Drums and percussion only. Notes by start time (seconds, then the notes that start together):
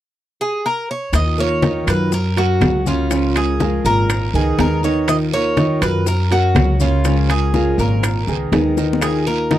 1.13 high bongo, high conga, high timbale, long guiro, claves, maracas
1.38 high conga, maracas
1.62 high bongo, high conga, high timbale, short guiro, maracas
1.87 high conga, high timbale, short guiro, claves, maracas
2.12 high bongo, high conga, long guiro, maracas
2.36 high conga, high timbale, maracas
2.61 high bongo, low bongo, high conga, high timbale, low timbale, short guiro, claves, maracas
2.86 high conga, short guiro, maracas
3.11 high bongo, high conga, high timbale, long guiro, maracas
3.35 high bongo, high conga, high timbale, claves, maracas
3.60 high bongo, high conga, short guiro, maracas
3.85 short guiro, maracas
4.09 high bongo, high conga, high timbale, long guiro, claves, maracas
4.34 high bongo, high conga, maracas
4.59 high bongo, low bongo, high conga, high timbale, low timbale, short guiro, maracas
4.83 high bongo, high conga, short guiro, maracas
5.08 high bongo, high conga, high timbale, long guiro, claves, maracas
5.33 high conga, maracas
5.57 high bongo, high conga, high timbale, short guiro, maracas
5.82 high conga, high timbale, short guiro, claves, maracas
6.06 high bongo, high conga, long guiro, maracas
6.31 high conga, high timbale, maracas
6.56 high bongo, low bongo, high conga, high timbale, low timbale, short guiro, claves, maracas
6.80 high conga, short guiro, maracas
7.05 high bongo, high conga, high timbale, long guiro, maracas
7.29 high bongo, high conga, high timbale, claves, maracas
7.54 high bongo, high conga, short guiro, maracas
7.79 short guiro, maracas
8.03 high bongo, high conga, high timbale, long guiro, claves, maracas
8.28 high bongo, high conga, maracas
8.53 high bongo, low bongo, high conga, high timbale, low timbale, short guiro, maracas
8.77 high bongo, high conga, short guiro, maracas
8.93 low bongo
9.02 high bongo, high conga, high timbale, long guiro, claves, maracas
9.26 high conga, maracas
9.51 high bongo, high conga, high timbale, short guiro, maracas